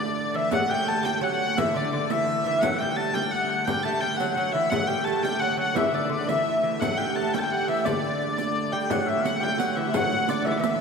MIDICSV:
0, 0, Header, 1, 7, 480
1, 0, Start_track
1, 0, Key_signature, 2, "major"
1, 0, Tempo, 348635
1, 720, Time_signature, 6, 3, 24, 8
1, 14880, End_track
2, 0, Start_track
2, 0, Title_t, "Hurdy-gurdy"
2, 0, Program_c, 0, 110
2, 0, Note_on_c, 0, 74, 73
2, 484, Note_off_c, 0, 74, 0
2, 484, Note_on_c, 0, 76, 92
2, 727, Note_off_c, 0, 76, 0
2, 727, Note_on_c, 0, 78, 93
2, 971, Note_off_c, 0, 78, 0
2, 971, Note_on_c, 0, 79, 91
2, 1211, Note_off_c, 0, 79, 0
2, 1211, Note_on_c, 0, 81, 100
2, 1440, Note_on_c, 0, 79, 91
2, 1448, Note_off_c, 0, 81, 0
2, 1689, Note_off_c, 0, 79, 0
2, 1689, Note_on_c, 0, 78, 88
2, 1938, Note_off_c, 0, 78, 0
2, 1938, Note_on_c, 0, 78, 100
2, 2178, Note_off_c, 0, 78, 0
2, 2178, Note_on_c, 0, 76, 95
2, 2423, Note_off_c, 0, 76, 0
2, 2423, Note_on_c, 0, 74, 79
2, 2650, Note_off_c, 0, 74, 0
2, 2650, Note_on_c, 0, 74, 86
2, 2892, Note_off_c, 0, 74, 0
2, 2892, Note_on_c, 0, 76, 100
2, 3358, Note_off_c, 0, 76, 0
2, 3358, Note_on_c, 0, 76, 99
2, 3596, Note_off_c, 0, 76, 0
2, 3596, Note_on_c, 0, 78, 95
2, 3826, Note_on_c, 0, 79, 90
2, 3828, Note_off_c, 0, 78, 0
2, 4074, Note_off_c, 0, 79, 0
2, 4074, Note_on_c, 0, 81, 92
2, 4314, Note_off_c, 0, 81, 0
2, 4314, Note_on_c, 0, 79, 91
2, 4554, Note_on_c, 0, 78, 86
2, 4566, Note_off_c, 0, 79, 0
2, 4807, Note_off_c, 0, 78, 0
2, 4807, Note_on_c, 0, 78, 92
2, 5014, Note_on_c, 0, 79, 91
2, 5036, Note_off_c, 0, 78, 0
2, 5267, Note_off_c, 0, 79, 0
2, 5267, Note_on_c, 0, 81, 94
2, 5509, Note_on_c, 0, 79, 91
2, 5523, Note_off_c, 0, 81, 0
2, 5731, Note_on_c, 0, 78, 94
2, 5746, Note_off_c, 0, 79, 0
2, 5958, Note_off_c, 0, 78, 0
2, 5958, Note_on_c, 0, 78, 86
2, 6217, Note_off_c, 0, 78, 0
2, 6217, Note_on_c, 0, 76, 93
2, 6462, Note_on_c, 0, 78, 93
2, 6479, Note_off_c, 0, 76, 0
2, 6702, Note_on_c, 0, 79, 86
2, 6721, Note_off_c, 0, 78, 0
2, 6941, Note_on_c, 0, 81, 93
2, 6961, Note_off_c, 0, 79, 0
2, 7196, Note_on_c, 0, 79, 94
2, 7201, Note_off_c, 0, 81, 0
2, 7424, Note_on_c, 0, 78, 89
2, 7448, Note_off_c, 0, 79, 0
2, 7685, Note_off_c, 0, 78, 0
2, 7685, Note_on_c, 0, 78, 96
2, 7923, Note_off_c, 0, 78, 0
2, 7923, Note_on_c, 0, 76, 88
2, 8178, Note_off_c, 0, 76, 0
2, 8178, Note_on_c, 0, 74, 82
2, 8419, Note_off_c, 0, 74, 0
2, 8419, Note_on_c, 0, 74, 78
2, 8655, Note_off_c, 0, 74, 0
2, 8655, Note_on_c, 0, 76, 90
2, 9130, Note_off_c, 0, 76, 0
2, 9130, Note_on_c, 0, 76, 91
2, 9360, Note_off_c, 0, 76, 0
2, 9360, Note_on_c, 0, 78, 88
2, 9598, Note_off_c, 0, 78, 0
2, 9598, Note_on_c, 0, 79, 82
2, 9848, Note_off_c, 0, 79, 0
2, 9848, Note_on_c, 0, 81, 91
2, 10099, Note_off_c, 0, 81, 0
2, 10099, Note_on_c, 0, 79, 90
2, 10164, Note_off_c, 0, 79, 0
2, 10164, Note_on_c, 0, 81, 75
2, 10228, Note_off_c, 0, 81, 0
2, 10228, Note_on_c, 0, 79, 82
2, 10343, Note_off_c, 0, 79, 0
2, 10343, Note_on_c, 0, 78, 84
2, 10572, Note_on_c, 0, 76, 87
2, 10579, Note_off_c, 0, 78, 0
2, 10807, Note_off_c, 0, 76, 0
2, 10807, Note_on_c, 0, 74, 85
2, 12006, Note_off_c, 0, 74, 0
2, 12006, Note_on_c, 0, 79, 83
2, 12263, Note_off_c, 0, 79, 0
2, 12263, Note_on_c, 0, 78, 87
2, 12501, Note_off_c, 0, 78, 0
2, 12501, Note_on_c, 0, 76, 80
2, 12737, Note_off_c, 0, 76, 0
2, 12737, Note_on_c, 0, 78, 83
2, 12983, Note_off_c, 0, 78, 0
2, 12983, Note_on_c, 0, 79, 96
2, 13194, Note_on_c, 0, 78, 92
2, 13213, Note_off_c, 0, 79, 0
2, 13434, Note_off_c, 0, 78, 0
2, 13434, Note_on_c, 0, 76, 89
2, 13673, Note_off_c, 0, 76, 0
2, 13673, Note_on_c, 0, 78, 95
2, 14166, Note_off_c, 0, 78, 0
2, 14166, Note_on_c, 0, 74, 83
2, 14380, Note_on_c, 0, 76, 91
2, 14400, Note_off_c, 0, 74, 0
2, 14472, Note_on_c, 0, 74, 72
2, 14480, Note_off_c, 0, 76, 0
2, 14556, Note_on_c, 0, 76, 88
2, 14572, Note_off_c, 0, 74, 0
2, 14868, Note_off_c, 0, 76, 0
2, 14880, End_track
3, 0, Start_track
3, 0, Title_t, "Shawm"
3, 0, Program_c, 1, 111
3, 0, Note_on_c, 1, 74, 61
3, 425, Note_off_c, 1, 74, 0
3, 484, Note_on_c, 1, 76, 68
3, 706, Note_off_c, 1, 76, 0
3, 712, Note_on_c, 1, 78, 80
3, 958, Note_on_c, 1, 79, 86
3, 979, Note_off_c, 1, 78, 0
3, 1442, Note_off_c, 1, 79, 0
3, 1452, Note_on_c, 1, 79, 83
3, 1673, Note_off_c, 1, 79, 0
3, 1694, Note_on_c, 1, 78, 85
3, 2170, Note_on_c, 1, 76, 76
3, 2191, Note_off_c, 1, 78, 0
3, 2410, Note_off_c, 1, 76, 0
3, 2423, Note_on_c, 1, 74, 79
3, 2640, Note_off_c, 1, 74, 0
3, 2655, Note_on_c, 1, 74, 83
3, 2908, Note_on_c, 1, 76, 82
3, 2928, Note_off_c, 1, 74, 0
3, 3378, Note_off_c, 1, 76, 0
3, 3386, Note_on_c, 1, 76, 78
3, 3600, Note_on_c, 1, 78, 89
3, 3620, Note_off_c, 1, 76, 0
3, 3861, Note_on_c, 1, 79, 93
3, 3881, Note_off_c, 1, 78, 0
3, 4090, Note_off_c, 1, 79, 0
3, 4099, Note_on_c, 1, 81, 87
3, 4333, Note_on_c, 1, 79, 81
3, 4353, Note_off_c, 1, 81, 0
3, 4569, Note_off_c, 1, 79, 0
3, 4578, Note_on_c, 1, 78, 98
3, 5063, Note_on_c, 1, 79, 83
3, 5084, Note_off_c, 1, 78, 0
3, 5285, Note_off_c, 1, 79, 0
3, 5293, Note_on_c, 1, 81, 86
3, 5519, Note_off_c, 1, 81, 0
3, 5537, Note_on_c, 1, 79, 82
3, 5757, Note_off_c, 1, 79, 0
3, 5765, Note_on_c, 1, 78, 84
3, 5995, Note_off_c, 1, 78, 0
3, 6026, Note_on_c, 1, 78, 83
3, 6246, Note_off_c, 1, 78, 0
3, 6269, Note_on_c, 1, 76, 72
3, 6476, Note_off_c, 1, 76, 0
3, 6485, Note_on_c, 1, 78, 76
3, 6715, Note_off_c, 1, 78, 0
3, 6740, Note_on_c, 1, 79, 80
3, 6963, Note_off_c, 1, 79, 0
3, 6977, Note_on_c, 1, 81, 87
3, 7227, Note_on_c, 1, 79, 77
3, 7247, Note_off_c, 1, 81, 0
3, 7453, Note_off_c, 1, 79, 0
3, 7462, Note_on_c, 1, 78, 78
3, 7674, Note_off_c, 1, 78, 0
3, 7682, Note_on_c, 1, 78, 78
3, 7914, Note_off_c, 1, 78, 0
3, 7942, Note_on_c, 1, 76, 79
3, 8450, Note_off_c, 1, 76, 0
3, 8651, Note_on_c, 1, 76, 77
3, 9100, Note_off_c, 1, 76, 0
3, 9381, Note_on_c, 1, 78, 77
3, 10089, Note_on_c, 1, 79, 75
3, 10109, Note_off_c, 1, 78, 0
3, 10198, Note_off_c, 1, 79, 0
3, 10206, Note_on_c, 1, 79, 80
3, 10545, Note_off_c, 1, 79, 0
3, 10582, Note_on_c, 1, 76, 69
3, 10802, Note_off_c, 1, 76, 0
3, 10823, Note_on_c, 1, 74, 66
3, 11959, Note_off_c, 1, 74, 0
3, 12016, Note_on_c, 1, 79, 68
3, 12254, Note_on_c, 1, 78, 77
3, 12275, Note_off_c, 1, 79, 0
3, 12481, Note_on_c, 1, 76, 75
3, 12502, Note_off_c, 1, 78, 0
3, 12714, Note_on_c, 1, 78, 84
3, 12735, Note_off_c, 1, 76, 0
3, 12948, Note_on_c, 1, 79, 81
3, 12969, Note_off_c, 1, 78, 0
3, 13196, Note_off_c, 1, 79, 0
3, 13207, Note_on_c, 1, 78, 89
3, 13650, Note_off_c, 1, 78, 0
3, 13702, Note_on_c, 1, 78, 82
3, 14136, Note_off_c, 1, 78, 0
3, 14174, Note_on_c, 1, 74, 75
3, 14389, Note_off_c, 1, 74, 0
3, 14412, Note_on_c, 1, 76, 77
3, 14576, Note_off_c, 1, 76, 0
3, 14601, Note_on_c, 1, 76, 77
3, 14880, Note_off_c, 1, 76, 0
3, 14880, End_track
4, 0, Start_track
4, 0, Title_t, "Lute"
4, 0, Program_c, 2, 24
4, 0, Note_on_c, 2, 50, 61
4, 418, Note_off_c, 2, 50, 0
4, 473, Note_on_c, 2, 52, 74
4, 699, Note_on_c, 2, 54, 84
4, 724, Note_off_c, 2, 52, 0
4, 929, Note_off_c, 2, 54, 0
4, 934, Note_on_c, 2, 55, 82
4, 1161, Note_on_c, 2, 57, 81
4, 1197, Note_off_c, 2, 55, 0
4, 1415, Note_on_c, 2, 55, 82
4, 1431, Note_off_c, 2, 57, 0
4, 1664, Note_off_c, 2, 55, 0
4, 1670, Note_on_c, 2, 54, 92
4, 2126, Note_off_c, 2, 54, 0
4, 2178, Note_on_c, 2, 52, 90
4, 2390, Note_off_c, 2, 52, 0
4, 2395, Note_on_c, 2, 50, 75
4, 2636, Note_off_c, 2, 50, 0
4, 2653, Note_on_c, 2, 50, 76
4, 2884, Note_off_c, 2, 50, 0
4, 2890, Note_on_c, 2, 52, 76
4, 3371, Note_off_c, 2, 52, 0
4, 3388, Note_on_c, 2, 52, 83
4, 3619, Note_on_c, 2, 54, 88
4, 3628, Note_off_c, 2, 52, 0
4, 3853, Note_off_c, 2, 54, 0
4, 3859, Note_on_c, 2, 55, 87
4, 4310, Note_off_c, 2, 55, 0
4, 4326, Note_on_c, 2, 55, 77
4, 5045, Note_off_c, 2, 55, 0
4, 5062, Note_on_c, 2, 55, 80
4, 5305, Note_on_c, 2, 57, 78
4, 5307, Note_off_c, 2, 55, 0
4, 5542, Note_on_c, 2, 55, 72
4, 5549, Note_off_c, 2, 57, 0
4, 5764, Note_off_c, 2, 55, 0
4, 5779, Note_on_c, 2, 54, 76
4, 6004, Note_off_c, 2, 54, 0
4, 6021, Note_on_c, 2, 54, 82
4, 6259, Note_on_c, 2, 52, 74
4, 6267, Note_off_c, 2, 54, 0
4, 6507, Note_off_c, 2, 52, 0
4, 6517, Note_on_c, 2, 54, 83
4, 6718, Note_off_c, 2, 54, 0
4, 6724, Note_on_c, 2, 55, 74
4, 6980, Note_off_c, 2, 55, 0
4, 6985, Note_on_c, 2, 57, 81
4, 7202, Note_on_c, 2, 55, 80
4, 7230, Note_off_c, 2, 57, 0
4, 7453, Note_off_c, 2, 55, 0
4, 7458, Note_on_c, 2, 54, 83
4, 7656, Note_off_c, 2, 54, 0
4, 7672, Note_on_c, 2, 54, 80
4, 7909, Note_on_c, 2, 52, 83
4, 7934, Note_off_c, 2, 54, 0
4, 8143, Note_off_c, 2, 52, 0
4, 8149, Note_on_c, 2, 50, 66
4, 8372, Note_off_c, 2, 50, 0
4, 8389, Note_on_c, 2, 50, 70
4, 8629, Note_off_c, 2, 50, 0
4, 8635, Note_on_c, 2, 52, 72
4, 9116, Note_off_c, 2, 52, 0
4, 9133, Note_on_c, 2, 52, 76
4, 9383, Note_off_c, 2, 52, 0
4, 9398, Note_on_c, 2, 54, 83
4, 9619, Note_off_c, 2, 54, 0
4, 9625, Note_on_c, 2, 55, 75
4, 9862, Note_on_c, 2, 57, 75
4, 9868, Note_off_c, 2, 55, 0
4, 10106, Note_off_c, 2, 57, 0
4, 10108, Note_on_c, 2, 55, 76
4, 10576, Note_on_c, 2, 52, 70
4, 10595, Note_off_c, 2, 55, 0
4, 10815, Note_off_c, 2, 52, 0
4, 10820, Note_on_c, 2, 50, 68
4, 11958, Note_off_c, 2, 50, 0
4, 12017, Note_on_c, 2, 55, 70
4, 12258, Note_off_c, 2, 55, 0
4, 12263, Note_on_c, 2, 54, 85
4, 12714, Note_off_c, 2, 54, 0
4, 12731, Note_on_c, 2, 54, 74
4, 12946, Note_off_c, 2, 54, 0
4, 12952, Note_on_c, 2, 55, 75
4, 13185, Note_off_c, 2, 55, 0
4, 13191, Note_on_c, 2, 54, 76
4, 13443, Note_off_c, 2, 54, 0
4, 13451, Note_on_c, 2, 52, 72
4, 13592, Note_on_c, 2, 55, 60
4, 13598, Note_off_c, 2, 52, 0
4, 13679, Note_off_c, 2, 55, 0
4, 13685, Note_on_c, 2, 54, 82
4, 14149, Note_on_c, 2, 50, 75
4, 14174, Note_off_c, 2, 54, 0
4, 14349, Note_on_c, 2, 54, 53
4, 14352, Note_off_c, 2, 50, 0
4, 14396, Note_off_c, 2, 54, 0
4, 14415, Note_on_c, 2, 52, 77
4, 14569, Note_off_c, 2, 52, 0
4, 14586, Note_on_c, 2, 52, 78
4, 14876, Note_off_c, 2, 52, 0
4, 14880, End_track
5, 0, Start_track
5, 0, Title_t, "Hurdy-gurdy"
5, 0, Program_c, 3, 110
5, 0, Note_on_c, 3, 50, 70
5, 0, Note_on_c, 3, 57, 75
5, 726, Note_off_c, 3, 57, 0
5, 726, Note_on_c, 3, 57, 78
5, 732, Note_off_c, 3, 50, 0
5, 732, Note_on_c, 3, 50, 80
5, 6471, Note_off_c, 3, 57, 0
5, 6471, Note_on_c, 3, 57, 75
5, 6477, Note_off_c, 3, 50, 0
5, 6477, Note_on_c, 3, 50, 76
5, 12238, Note_off_c, 3, 57, 0
5, 12238, Note_on_c, 3, 57, 84
5, 12244, Note_off_c, 3, 50, 0
5, 12244, Note_on_c, 3, 50, 82
5, 14880, Note_off_c, 3, 50, 0
5, 14880, Note_off_c, 3, 57, 0
5, 14880, End_track
6, 0, Start_track
6, 0, Title_t, "Frame drum"
6, 722, Note_on_c, 9, 64, 85
6, 859, Note_off_c, 9, 64, 0
6, 959, Note_on_c, 9, 64, 26
6, 1097, Note_off_c, 9, 64, 0
6, 1450, Note_on_c, 9, 64, 65
6, 1587, Note_off_c, 9, 64, 0
6, 2173, Note_on_c, 9, 64, 91
6, 2311, Note_off_c, 9, 64, 0
6, 2440, Note_on_c, 9, 64, 31
6, 2577, Note_off_c, 9, 64, 0
6, 2904, Note_on_c, 9, 64, 69
6, 3042, Note_off_c, 9, 64, 0
6, 3152, Note_on_c, 9, 64, 28
6, 3290, Note_off_c, 9, 64, 0
6, 3621, Note_on_c, 9, 64, 93
6, 3759, Note_off_c, 9, 64, 0
6, 3869, Note_on_c, 9, 64, 29
6, 4007, Note_off_c, 9, 64, 0
6, 4345, Note_on_c, 9, 64, 71
6, 4482, Note_off_c, 9, 64, 0
6, 4599, Note_on_c, 9, 64, 26
6, 4736, Note_off_c, 9, 64, 0
6, 5060, Note_on_c, 9, 64, 87
6, 5198, Note_off_c, 9, 64, 0
6, 5792, Note_on_c, 9, 64, 68
6, 5930, Note_off_c, 9, 64, 0
6, 6271, Note_on_c, 9, 64, 28
6, 6409, Note_off_c, 9, 64, 0
6, 6500, Note_on_c, 9, 64, 98
6, 6637, Note_off_c, 9, 64, 0
6, 6743, Note_on_c, 9, 64, 30
6, 6881, Note_off_c, 9, 64, 0
6, 7217, Note_on_c, 9, 64, 73
6, 7355, Note_off_c, 9, 64, 0
6, 7455, Note_on_c, 9, 64, 28
6, 7592, Note_off_c, 9, 64, 0
6, 7944, Note_on_c, 9, 64, 91
6, 8082, Note_off_c, 9, 64, 0
6, 8203, Note_on_c, 9, 64, 29
6, 8340, Note_off_c, 9, 64, 0
6, 8674, Note_on_c, 9, 64, 65
6, 8812, Note_off_c, 9, 64, 0
6, 8921, Note_on_c, 9, 64, 26
6, 9059, Note_off_c, 9, 64, 0
6, 9383, Note_on_c, 9, 64, 83
6, 9520, Note_off_c, 9, 64, 0
6, 10104, Note_on_c, 9, 64, 72
6, 10242, Note_off_c, 9, 64, 0
6, 10352, Note_on_c, 9, 64, 28
6, 10489, Note_off_c, 9, 64, 0
6, 10827, Note_on_c, 9, 64, 96
6, 10964, Note_off_c, 9, 64, 0
6, 11070, Note_on_c, 9, 64, 28
6, 11207, Note_off_c, 9, 64, 0
6, 11532, Note_on_c, 9, 64, 65
6, 11670, Note_off_c, 9, 64, 0
6, 11778, Note_on_c, 9, 64, 26
6, 11915, Note_off_c, 9, 64, 0
6, 12012, Note_on_c, 9, 64, 23
6, 12150, Note_off_c, 9, 64, 0
6, 12255, Note_on_c, 9, 64, 94
6, 12393, Note_off_c, 9, 64, 0
6, 12509, Note_on_c, 9, 64, 30
6, 12647, Note_off_c, 9, 64, 0
6, 12983, Note_on_c, 9, 64, 76
6, 13120, Note_off_c, 9, 64, 0
6, 13202, Note_on_c, 9, 64, 29
6, 13340, Note_off_c, 9, 64, 0
6, 13452, Note_on_c, 9, 64, 30
6, 13589, Note_off_c, 9, 64, 0
6, 13690, Note_on_c, 9, 64, 108
6, 13827, Note_off_c, 9, 64, 0
6, 13929, Note_on_c, 9, 64, 33
6, 14067, Note_off_c, 9, 64, 0
6, 14406, Note_on_c, 9, 64, 75
6, 14544, Note_off_c, 9, 64, 0
6, 14638, Note_on_c, 9, 64, 33
6, 14776, Note_off_c, 9, 64, 0
6, 14880, End_track
7, 0, Start_track
7, 0, Title_t, "Riq"
7, 708, Note_on_c, 9, 54, 64
7, 846, Note_off_c, 9, 54, 0
7, 963, Note_on_c, 9, 54, 20
7, 1101, Note_off_c, 9, 54, 0
7, 1443, Note_on_c, 9, 54, 52
7, 1581, Note_off_c, 9, 54, 0
7, 2172, Note_on_c, 9, 54, 65
7, 2310, Note_off_c, 9, 54, 0
7, 2416, Note_on_c, 9, 54, 22
7, 2553, Note_off_c, 9, 54, 0
7, 2893, Note_on_c, 9, 54, 53
7, 3031, Note_off_c, 9, 54, 0
7, 3616, Note_on_c, 9, 54, 66
7, 3754, Note_off_c, 9, 54, 0
7, 3863, Note_on_c, 9, 54, 21
7, 4000, Note_off_c, 9, 54, 0
7, 4337, Note_on_c, 9, 54, 47
7, 4474, Note_off_c, 9, 54, 0
7, 5057, Note_on_c, 9, 54, 58
7, 5195, Note_off_c, 9, 54, 0
7, 5299, Note_on_c, 9, 54, 20
7, 5437, Note_off_c, 9, 54, 0
7, 5782, Note_on_c, 9, 54, 49
7, 5920, Note_off_c, 9, 54, 0
7, 6021, Note_on_c, 9, 54, 20
7, 6159, Note_off_c, 9, 54, 0
7, 6494, Note_on_c, 9, 54, 66
7, 6631, Note_off_c, 9, 54, 0
7, 6737, Note_on_c, 9, 54, 21
7, 6875, Note_off_c, 9, 54, 0
7, 7222, Note_on_c, 9, 54, 50
7, 7360, Note_off_c, 9, 54, 0
7, 7931, Note_on_c, 9, 54, 63
7, 8069, Note_off_c, 9, 54, 0
7, 8171, Note_on_c, 9, 54, 21
7, 8309, Note_off_c, 9, 54, 0
7, 8659, Note_on_c, 9, 54, 52
7, 8797, Note_off_c, 9, 54, 0
7, 9389, Note_on_c, 9, 54, 70
7, 9527, Note_off_c, 9, 54, 0
7, 9631, Note_on_c, 9, 54, 20
7, 9769, Note_off_c, 9, 54, 0
7, 10111, Note_on_c, 9, 54, 49
7, 10249, Note_off_c, 9, 54, 0
7, 10817, Note_on_c, 9, 54, 57
7, 10955, Note_off_c, 9, 54, 0
7, 11070, Note_on_c, 9, 54, 20
7, 11208, Note_off_c, 9, 54, 0
7, 11310, Note_on_c, 9, 54, 21
7, 11448, Note_off_c, 9, 54, 0
7, 11543, Note_on_c, 9, 54, 49
7, 11681, Note_off_c, 9, 54, 0
7, 12262, Note_on_c, 9, 54, 69
7, 12400, Note_off_c, 9, 54, 0
7, 12504, Note_on_c, 9, 54, 22
7, 12642, Note_off_c, 9, 54, 0
7, 12741, Note_on_c, 9, 54, 65
7, 12878, Note_off_c, 9, 54, 0
7, 13212, Note_on_c, 9, 54, 71
7, 13350, Note_off_c, 9, 54, 0
7, 13684, Note_on_c, 9, 54, 66
7, 13821, Note_off_c, 9, 54, 0
7, 13926, Note_on_c, 9, 54, 23
7, 14063, Note_off_c, 9, 54, 0
7, 14162, Note_on_c, 9, 54, 67
7, 14299, Note_off_c, 9, 54, 0
7, 14642, Note_on_c, 9, 54, 79
7, 14780, Note_off_c, 9, 54, 0
7, 14880, End_track
0, 0, End_of_file